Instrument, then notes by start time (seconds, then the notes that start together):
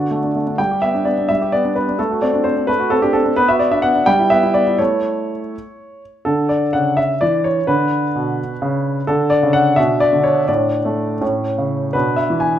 grand piano
Already playing: D3 D5
0.00 F#4
0.11 A3
0.23 D4
0.35 A3
0.47 D4
0.58 G3 G5
0.71 G4
0.82 B3 E5
0.94 D4
1.05 B3 D5
1.18 D4
1.29 G3 E5
1.42 G4
1.52 B3 D5
1.65 D4
1.75 B3 B4
1.89 D4
1.99 A3 A4
2.11 F#4
2.22 C4 D5
2.33 D4
2.44 C4 C5
2.57 D4
2.67 A3 B4
2.79 F#4
2.90 C4 A4
3.02 D4 G4
3.13 C4 A4
3.26 D4
3.36 B3 B4
3.48 F#4 E5
3.59 B3 D5
3.71 D4 E5
3.82 B3 F#5
3.95 D4
4.06 G3 G5
4.19 E4
4.30 B3 E5
4.43 E4
4.54 B3 D5
4.67 E4
4.78 A3 E4 C#5
6.25 D3 D4 A4
6.49 D5
6.73 C#3 F#5
6.97 E5
7.21 E3 D5
7.44 C#5
7.67 D3 D4 B4
8.16 B2
8.62 C#3
9.07 D3 D4 A4
9.30 D5
9.43 C#3
9.53 F#5
9.76 B2 D4 E5
10.00 D5
10.13 D3
10.24 C#5
10.48 A2 D4 D5
10.85 A3
11.21 A2 C#4
11.58 C#3
11.93 B2 D4 B4
12.16 E5
12.30 E3
12.40 G#5